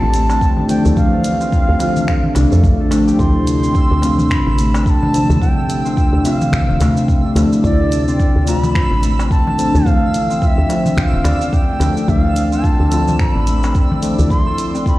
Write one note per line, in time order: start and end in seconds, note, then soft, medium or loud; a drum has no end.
0.00 0.62 A1 medium
0.00 14.99 D3 medium
0.00 0.68 F3 medium
0.00 0.13 A3 loud
0.00 0.68 A3 medium
0.00 14.99 A3 medium
0.00 0.30 C4 loud
0.00 0.69 C4 medium
0.00 3.15 C4 medium
0.00 0.57 D4 medium
0.00 0.70 D4 medium
0.00 3.21 E4 loud
0.00 0.67 F4 loud
0.00 0.91 F4 medium
0.00 3.19 G4 loud
0.00 1.10 A4 medium
0.00 1.84 C5 medium
0.00 0.69 A5 loud
0.00 darbuka ka soft
0.14 2.52 A3 loud
0.14 closed hi-hat medium
0.14 shaker medium
0.29 1.41 C4 medium
0.29 darbuka tek medium
0.29 shaker soft
0.41 kick loud
0.41 shaker soft
0.57 0.96 D4 medium
0.57 darbuka dum medium
0.68 0.93 F3 medium
0.68 0.94 A3 medium
0.68 0.94 C4 medium
0.68 0.95 D4 loud
0.68 0.95 G5 loud
0.68 closed hi-hat loud
0.68 shaker medium
0.85 0.93 D2 medium
0.85 1.58 E4 medium
0.85 darbuka dum medium
0.85 shaker soft
0.95 1.78 E3 loud
0.95 1.76 F3 medium
0.95 1.77 A3 medium
0.95 1.78 C4 medium
0.95 1.68 D4 medium
0.95 2.88 F5 loud
0.95 kick loud
0.95 shaker soft
1.13 2.80 A4 medium
1.24 closed hi-hat loud
1.24 shaker medium
1.41 3.63 C4 loud
1.41 darbuka ka soft
1.41 shaker soft
1.52 3.74 F4 medium
1.52 kick loud
1.52 shaker soft
1.69 1.76 D2 medium
1.69 2.35 D4 medium
1.79 2.88 F3 medium
1.79 2.89 A3 medium
1.79 2.89 C4 medium
1.79 2.90 F4 loud
1.79 closed hi-hat loud
1.79 darbuka ka medium
1.79 shaker medium
1.96 darbuka dum medium
1.96 shaker soft
2.08 4.06 C5 medium
2.08 finger snap medium
2.08 kick loud
2.08 darbuka tek soft
2.08 shaker soft
2.23 darbuka dum medium
2.35 2.46 C2 loud
2.35 3.19 D4 loud
2.35 closed hi-hat medium
2.35 darbuka tek medium
2.35 shaker medium
2.52 2.65 F2 medium
2.52 4.58 A3 loud
2.52 shaker soft
2.64 3.12 A1 loud
2.64 kick loud
2.64 shaker soft
2.80 3.35 A4 medium
2.90 3.16 F3 medium
2.90 3.16 A3 medium
2.90 3.17 C4 medium
2.90 3.17 D4 loud
2.90 closed hi-hat loud
2.90 darbuka ka medium
2.90 darbuka tek medium
2.90 shaker medium
3.07 5.43 G4 loud
3.07 shaker soft
3.17 3.81 D2 loud
3.17 12.07 C3 medium
3.17 3.99 F3 loud
3.17 4.00 A3 medium
3.17 4.00 C4 medium
3.17 3.90 D4 medium
3.17 4.30 C6 loud
3.17 14.99 E6 medium
3.17 kick loud
3.17 shaker soft
3.21 4.01 E4 loud
3.35 5.55 A4 medium
3.47 closed hi-hat medium
3.47 shaker medium
3.63 4.74 C4 loud
3.63 shaker soft
3.75 5.36 F4 medium
3.75 kick loud
3.75 shaker soft
3.91 4.32 D2 medium
3.91 5.01 D4 medium
4.01 5.10 F3 medium
4.01 5.11 A3 medium
4.01 5.11 C4 medium
4.01 closed hi-hat medium
4.01 darbuka ka medium
4.01 shaker medium
4.05 5.12 F4 medium
4.18 darbuka dum medium
4.18 shaker soft
4.30 4.40 G2 medium
4.30 6.28 C5 medium
4.30 4.35 C6 loud
4.30 finger snap medium
4.30 kick loud
4.30 shaker soft
4.34 4.85 B5 loud
4.47 5.07 A1 medium
4.47 darbuka ka soft
4.58 6.80 A3 loud
4.58 closed hi-hat medium
4.58 shaker medium
4.74 5.85 C4 medium
4.74 darbuka tek medium
4.74 shaker soft
4.86 5.38 A5 loud
4.86 4.91 B5 loud
4.86 kick loud
4.86 shaker soft
5.02 5.41 D4 medium
5.02 darbuka dum loud
5.13 5.38 F3 medium
5.13 5.39 A3 medium
5.13 5.39 C4 medium
5.13 5.39 D4 loud
5.13 closed hi-hat medium
5.13 shaker medium
5.30 5.37 D2 medium
5.30 6.02 E4 medium
5.30 darbuka dum medium
5.30 shaker soft
5.39 6.21 F3 medium
5.39 6.22 A3 medium
5.39 6.22 C4 medium
5.39 6.13 D4 medium
5.39 6.23 E4 loud
5.39 6.26 G5 loud
5.39 kick loud
5.39 shaker soft
5.57 7.77 A4 medium
5.70 closed hi-hat loud
5.70 shaker medium
5.85 6.97 C4 loud
5.85 darbuka ka soft
5.85 shaker soft
5.96 7.59 F4 medium
5.96 kick loud
5.96 shaker soft
6.13 6.20 D2 medium
6.13 7.24 D4 medium
6.22 7.32 F3 medium
6.22 7.33 A3 medium
6.22 7.33 C4 medium
6.22 7.36 F5 medium
6.22 closed hi-hat loud
6.22 darbuka ka medium
6.22 shaker medium
6.27 7.34 F4 loud
6.41 darbuka dum medium
6.41 shaker soft
6.53 6.62 D2 medium
6.53 8.51 C5 medium
6.53 finger snap medium
6.53 kick loud
6.53 shaker soft
6.69 6.76 D1 medium
6.69 darbuka dum loud
6.80 6.90 D2 medium
6.80 9.02 A3 loud
6.80 closed hi-hat medium
6.80 darbuka tek medium
6.80 shaker medium
6.97 8.08 C4 medium
6.97 shaker soft
7.08 kick loud
7.08 shaker soft
7.25 7.64 D4 medium
7.35 7.46 D2 loud
7.35 7.60 F3 medium
7.35 7.61 A3 medium
7.35 7.61 C4 medium
7.35 7.61 D4 loud
7.35 closed hi-hat medium
7.35 darbuka ka medium
7.35 darbuka tek medium
7.35 shaker medium
7.53 8.25 E4 medium
7.53 shaker soft
7.62 8.25 D2 medium
7.62 8.43 F3 loud
7.62 8.44 A3 medium
7.62 8.45 C4 medium
7.62 8.35 D4 medium
7.62 8.05 D5 loud
7.62 kick loud
7.62 shaker soft
7.66 8.45 E4 loud
7.80 10.00 A4 medium
7.92 closed hi-hat medium
7.92 shaker medium
8.08 9.18 C4 loud
8.08 8.45 D5 loud
8.08 shaker soft
8.19 9.81 F4 medium
8.19 kick loud
8.19 shaker soft
8.36 8.77 D2 medium
8.36 9.47 D4 medium
8.45 9.54 F3 medium
8.45 9.55 A3 medium
8.45 9.56 C4 medium
8.45 9.56 F4 loud
8.45 8.60 A#5 loud
8.45 closed hi-hat medium
8.45 darbuka ka medium
8.45 shaker medium
8.60 9.27 B5 loud
8.60 darbuka dum medium
8.64 shaker soft
8.75 8.85 G2 medium
8.75 10.73 C5 medium
8.75 finger snap medium
8.75 kick loud
8.75 shaker soft
8.91 9.51 A1 medium
8.91 darbuka ka soft
9.03 11.68 A3 loud
9.03 closed hi-hat medium
9.03 shaker medium
9.19 10.30 C4 medium
9.19 darbuka tek medium
9.19 shaker soft
9.31 9.88 A5 loud
9.31 kick loud
9.31 shaker soft
9.47 9.86 D4 medium
9.47 darbuka dum loud
9.58 9.83 F3 medium
9.58 9.83 A3 medium
9.58 9.84 C4 medium
9.58 9.84 D4 loud
9.58 closed hi-hat medium
9.58 shaker medium
9.75 9.82 D2 medium
9.75 10.48 E4 medium
9.75 darbuka dum medium
9.75 shaker soft
9.85 10.68 E3 loud
9.85 10.66 F3 medium
9.85 10.66 A3 medium
9.85 10.67 C4 medium
9.85 10.58 D4 medium
9.85 10.42 F5 loud
9.85 kick loud
9.85 shaker soft
10.02 11.52 A4 medium
10.14 closed hi-hat medium
10.14 shaker medium
10.30 12.51 C4 loud
10.30 darbuka ka soft
10.30 shaker soft
10.42 12.64 F4 medium
10.42 10.47 F5 medium
10.42 kick loud
10.42 shaker soft
10.46 10.97 E5 loud
10.58 10.65 D2 medium
10.58 11.41 D4 medium
10.68 11.77 F3 medium
10.68 11.78 A3 medium
10.68 11.78 C4 medium
10.68 closed hi-hat medium
10.68 darbuka ka medium
10.68 darbuka tek soft
10.68 shaker medium
10.72 11.79 F4 loud
10.86 darbuka dum medium
10.86 shaker soft
10.97 11.07 D2 medium
10.97 12.95 C5 medium
10.97 11.03 G5 medium
10.97 finger snap medium
10.97 kick loud
10.97 darbuka tek soft
10.97 shaker soft
11.02 11.55 F5 loud
11.13 11.20 D1 medium
11.13 darbuka dum loud
11.24 11.35 D2 medium
11.24 13.10 D5 medium
11.24 closed hi-hat medium
11.24 darbuka tek medium
11.24 shaker medium
11.41 11.96 D4 medium
11.41 shaker soft
11.53 12.24 A4 medium
11.53 12.11 G5 loud
11.53 kick loud
11.53 shaker soft
11.69 13.47 A3 medium
11.79 11.90 D2 medium
11.79 12.05 F3 loud
11.79 12.05 A3 medium
11.79 12.06 C4 medium
11.79 12.06 D4 loud
11.79 closed hi-hat medium
11.79 darbuka ka medium
11.79 darbuka tek medium
11.79 shaker medium
11.97 12.08 D4 medium
11.97 shaker soft
12.07 12.70 D2 loud
12.07 12.90 E3 loud
12.07 12.88 F3 medium
12.07 12.89 A3 medium
12.07 12.89 C4 medium
12.07 12.80 D4 medium
12.07 14.99 D5 loud
12.07 12.66 F5 loud
12.07 kick loud
12.07 shaker soft
12.24 14.44 A4 medium
12.36 closed hi-hat medium
12.36 shaker medium
12.52 13.63 C4 loud
12.52 shaker soft
12.64 14.25 F4 medium
12.64 13.19 A5 loud
12.64 kick loud
12.64 shaker soft
12.80 13.21 D2 medium
12.80 13.91 D4 medium
12.89 13.99 F3 medium
12.89 13.99 A3 medium
12.89 14.00 C4 medium
12.89 closed hi-hat medium
12.89 darbuka ka medium
12.89 shaker medium
12.93 14.01 F4 medium
13.08 darbuka dum medium
13.08 shaker soft
13.19 13.29 G2 medium
13.19 14.99 C5 medium
13.19 13.30 A#5 medium
13.19 finger snap medium
13.19 kick loud
13.19 shaker soft
13.30 14.00 B5 medium
13.36 13.95 A1 medium
13.36 darbuka ka soft
13.47 14.99 A3 medium
13.47 closed hi-hat medium
13.47 shaker medium
13.63 14.74 C4 medium
13.63 darbuka tek medium
13.63 shaker soft
13.75 kick loud
13.75 shaker soft
13.91 14.30 D4 medium
13.91 darbuka dum loud
14.01 14.27 F3 loud
14.01 14.27 A3 medium
14.01 14.28 C4 medium
14.01 14.28 D4 loud
14.01 closed hi-hat medium
14.01 shaker medium
14.19 14.26 D2 medium
14.19 14.92 E4 medium
14.19 darbuka dum medium
14.19 shaker soft
14.28 14.99 F3 medium
14.28 14.99 A3 medium
14.28 14.99 C4 medium
14.28 14.99 D4 medium
14.28 14.99 E4 loud
14.28 14.85 C6 loud
14.28 kick medium
14.28 shaker soft
14.47 14.99 A4 medium
14.58 closed hi-hat medium
14.58 shaker medium
14.74 14.99 C4 loud
14.74 darbuka ka soft
14.74 shaker soft
14.85 14.99 F4 medium
14.85 14.90 C6 loud
14.85 kick loud
14.85 shaker soft
14.89 14.99 B5 loud